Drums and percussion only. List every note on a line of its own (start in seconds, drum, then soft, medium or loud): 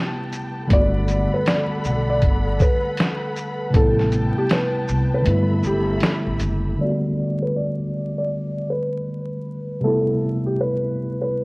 0.32 closed hi-hat medium
0.32 shaker medium
0.70 kick loud
0.70 closed hi-hat medium
1.08 closed hi-hat soft
1.08 shaker soft
1.46 snare loud
1.46 closed hi-hat medium
1.84 shaker medium
2.22 kick medium
2.22 closed hi-hat medium
2.60 kick loud
2.60 shaker soft
2.97 snare loud
2.97 closed hi-hat medium
3.36 closed hi-hat soft
3.36 shaker medium
3.74 kick loud
3.74 closed hi-hat medium
3.99 snare soft
4.12 closed hi-hat soft
4.12 shaker soft
4.49 snare loud
4.49 closed hi-hat medium
4.88 shaker medium
5.26 closed hi-hat medium
5.63 shaker soft
6.01 snare loud
6.01 closed hi-hat medium
6.40 closed hi-hat medium
6.40 shaker medium